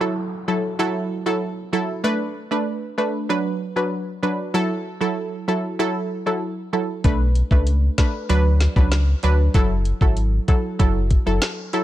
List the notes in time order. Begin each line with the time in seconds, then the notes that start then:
Already playing: downlifter
0.01 F#3 E4 A4
0.48 F#3 E4 A4
0.79 F#3 E4 A4
1.26 F#3 E4 A4
1.73 F#3 E4 A4
2.04 A3 D4 B4
2.51 A3 D4 B4
2.98 A3 D4 B4
3.29 F#3 D4 B4
3.76 F#3 D4 B4
4.23 F#3 D4 B4
4.54 F#3 E4 A4
5.01 F#3 E4 A4
5.48 F#3 E4 A4
5.79 F#3 E4 A4
6.26 F#3 E4 A4
6.73 F#3 E4 A4
7.04 B1 A3 D4 B4, kick, closed hi-hat
7.35 closed hi-hat
7.51 C#2 A3 D4 B4, kick
7.67 closed hi-hat
7.98 A3 D4 B4, kick, snare, closed hi-hat
8.29 D2 F#3 D4 B4, closed hi-hat
8.60 snare, closed hi-hat
8.76 C#2 F#3 D4 B4, kick
8.92 snare, closed hi-hat
9.23 D2 F#3 D4 B4, closed hi-hat
9.54 F#1 F#3 E4 A4, kick, closed hi-hat
9.85 closed hi-hat
10.01 G#1 F#3 E4 A4, kick
10.17 closed hi-hat
10.48 F#3 E4 A4, kick, closed hi-hat
10.79 F#1 F#3 E4 A4, kick, closed hi-hat
11.11 kick, closed hi-hat
11.26 F#1 F#3 E4 A4
11.42 snare, closed hi-hat
11.73 F#3 E4 A4, closed hi-hat